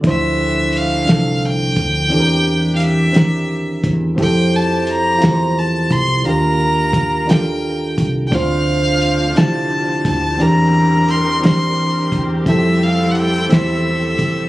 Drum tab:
HH |x-xx-x|x-xx-x|x-xx-x|x-xx-x|
SD |---o--|---o--|---o--|---o--|
BD |o----o|-----o|o----o|--o--o|

HH |x-xx-x|x-xx-x|x-xx-x|
SD |---o--|---o--|---o--|
BD |o----o|-----o|o----o|